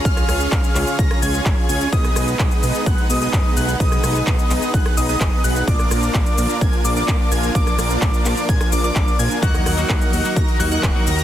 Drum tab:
HH |xxoxxxoxxxoxx-ox|xxoxxxoxxxoxx-ox|xxoxxxoxxxoxx-ox|xxoxxxoxxxoxx-ox|
SH |xxxxxxxxx-xxx-xx|xxxxxxxxx-xxx-xx|xxxxxxxxx-xxx-xx|xxxxxxxxx-xxx-xx|
CP |----x-x-----x---|----x-------x---|----x-x-----x---|----x-------x---|
SD |-rr------r------|-rr-------------|-rr------r------|-rr-------------|
BD |o---o---o---o---|o---o---o---o---|o---o---o---o---|o---o---o---o---|

HH |xxoxxxoxxxoxx-ox|xxoxxxoxxxoxx-ox|
SH |xxxxxxxxxxxxxxxx|xxxxxxxxx-xxx-xx|
CP |----x-x-----x---|----x-------x---|
SD |-rr------r------|-rr-------------|
BD |o---o---o---o---|o---o---o---o---|